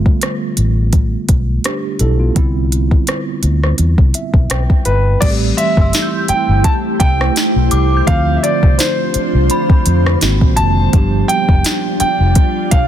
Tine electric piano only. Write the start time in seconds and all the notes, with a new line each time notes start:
Already playing: D3 G3 A3 B3 F4
1.65 D4 G4
2.01 E4 A4
2.20 B3 F4
2.35 D3 G3 B3 C4 E4
4.15 E5
4.50 G5
5.21 E3 G3 A3 C4 F#4
5.31 G4
8.06 D3 F3 A3 C4 F4
10.22 D#3 G#3 A#3 C4 F#4
10.92 F3 G3 B3 D4 G4